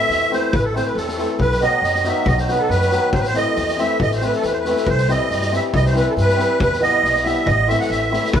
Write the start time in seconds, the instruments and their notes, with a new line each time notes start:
Already playing: hammered dulcimer E3, accordion E5
0.09 upright bass E2, snare
0.30 hammered dulcimer E3 A3 C4 E4, accordion C5, snare
0.53 upright bass A1, accordion B4, kick
0.64 accordion A4
0.74 hammered dulcimer E3 A3 C4 E4, accordion C5, snare
0.86 accordion B4
0.95 upright bass E2, accordion A4, snare
1.08 snare
1.18 hammered dulcimer E3 A3 C4 E4, snare
1.39 upright bass B1, accordion B4, kick
1.51 snare
1.60 hammered dulcimer D#3 F#3 B3 D#4, accordion D#5, snare
1.82 upright bass F#2, snare
1.95 snare
2.04 hammered dulcimer D#3 F#3 B3 D#4, accordion E5, snare
2.25 upright bass B1, accordion D#5, kick
2.37 accordion C5, snare
2.48 hammered dulcimer D#3 F#3 B3 D#4, accordion B4, snare
2.59 accordion A4
2.69 upright bass F#2, accordion B4, snare
2.81 snare
2.91 hammered dulcimer D#3 F#3 B3 D#4, snare
3.13 upright bass A1, accordion C5, kick
3.20 accordion B4, snare
3.27 accordion C5
3.34 hammered dulcimer E3 A3 C4 E4, accordion D#5, snare
3.56 upright bass E2, snare
3.68 snare
3.77 hammered dulcimer E3 A3 C4 E4, accordion E5, snare
4.00 upright bass A1, accordion D#5, kick
4.11 snare
4.15 accordion C5
4.21 hammered dulcimer E3 A3 C4 E4, accordion B4, snare
4.32 accordion A4, snare
4.42 upright bass E2, accordion B4, snare
4.52 accordion C5
4.60 accordion B4
4.65 hammered dulcimer E3 A3 C4 E4, snare
4.76 snare
4.87 upright bass C2, accordion C5, kick
4.97 snare
5.08 hammered dulcimer E3 G3 C4 E4, accordion D#5, snare
5.30 upright bass G2, snare
5.41 snare
5.52 hammered dulcimer E3 G3 C4 E4, accordion E5, snare
5.73 upright bass C2, accordion D#5, kick
5.85 accordion C5, snare
5.93 hammered dulcimer E3 G3 C4 E4, snare
5.97 accordion B4
6.10 accordion A4
6.17 upright bass G2, accordion B4, snare
6.29 snare
6.36 hammered dulcimer E3 G3 C4 E4, snare
6.60 upright bass E2, accordion B4, kick
6.73 snare
6.80 hammered dulcimer E3 G3 B3 E4, accordion D#5, snare
7.03 upright bass B1, snare
7.15 snare
7.24 hammered dulcimer E3 G3 B3 E4, accordion E5, snare
7.46 upright bass A1, accordion D#5, kick
7.67 hammered dulcimer E3 A3 C4 E4, accordion E5, snare
7.80 accordion F#5, snare
7.89 upright bass A1, accordion E5, snare
8.10 hammered dulcimer E3 A3 C4 E4, snare
8.24 snare
8.33 upright bass B1, accordion B4, kick